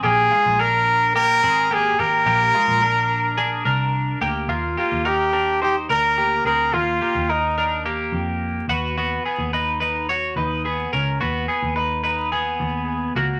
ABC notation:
X:1
M:4/4
L:1/16
Q:1/4=107
K:Eb
V:1 name="Trumpet"
A4 B4 B4 A2 B2- | B12 z4 | z2 F2 G4 G2 B4 B2 | F4 E4 z8 |
z16 | z16 |]
V:2 name="Clean electric guitar"
[B,G]2 [A,F]2 [DB]4 [B,G]2 [CA]2 [B,G]2 [B,G]2 | [B,G]2 [A,F]2 [DB]4 [DA]2 [DB]4 [B,G]2 | [B,F]2 [B,G]2 [EB]2 [DB]2 [Ec]2 [DB]2 [B,G]2 [CA]2 | [B,F]2 [B,G]2 [EB]2 [DB]2 [B,G]6 [=B,^F]2 |
[=B,^F]2 [B,^G]2 [^D=B]2 [DB]2 [F_d]2 [^DB]2 [B,G]2 [_D_B]2 | [=B,^F]2 [B,^G]2 [^D=B]2 [DB]2 [B,G]6 [_B,F]2 |]
V:3 name="Picked electric bass" clef=bass
B,,,2 z B,,,6- B,,, A,,,4 A,,,2 | B,,,2 z B,,,6- B,,, C,,4 D,,2 | E,,2 z E,,6- E,, D,,4 D,,2 | E,,2 z E,,6- E,, F,,4 ^D,,2- |
^D,,2 z D,,6- D,, D,,4 _D,,2 | ^D,,2 z D,,6- D,, D,,4 _D,,2 |]